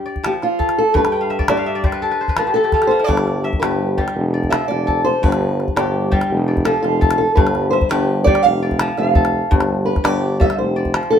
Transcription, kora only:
Already playing: G4 E5
0.06 D5
0.23 F3
0.59 A4
0.94 G2
1.12 G5
1.21 F5
1.30 E5
1.39 D5
1.48 G2 E5
1.57 F5
1.66 E5
1.75 D5
1.84 G3 C5
1.93 B4
2.02 A4
2.11 B4
2.21 C5
2.29 B4
2.38 F3 A4
2.47 G4
2.56 A4
2.64 G4
2.74 F4 A4
2.82 G4
2.91 F4
3.00 E4
3.08 G2
3.44 E5
3.62 G2 G4
3.98 G3 G4
4.34 D5
4.51 F3
4.87 A4
5.23 G2
5.76 G2 G4
6.11 G3 G4
6.48 D5
6.65 F3
7.01 A4
7.37 G2
7.73 E5
7.91 G2 G4
8.27 G3 G4
8.62 D5
8.80 F3
9.15 A4
9.51 G2
10.04 G2 G4
10.40 G3 G4
10.76 D5
10.94 F3

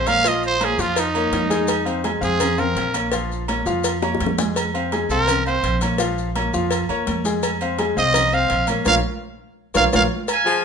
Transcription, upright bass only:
Already playing: A#1
0.78 F2
1.32 F2
2.21 F2
2.75 A#1
3.66 F2
4.21 F2
5.09 C2
5.63 A#1
6.54 F2
6.89 D#2
7.08 F2
7.97 C2
8.50 A#1
8.86 A#1
9.75 A#1
9.94 A#1

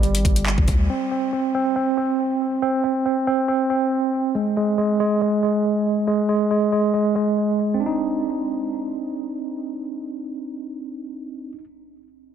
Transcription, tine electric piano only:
0.03 G3
0.25 G3
0.90 C4
1.11 C4
1.33 C4
1.54 C4
1.76 C4
1.97 C4
2.62 C4
2.84 C4
3.05 C4
3.27 C4
3.49 C4
3.70 C4
4.35 G#3
4.57 G#3
4.78 G#3
5.00 G#3
5.21 G#3
5.43 G#3
6.07 G#3
6.29 G#3
6.51 G#3
6.72 G#3
6.94 G#3
7.15 G#3
7.74 C4
7.80 D4
7.86 D#4

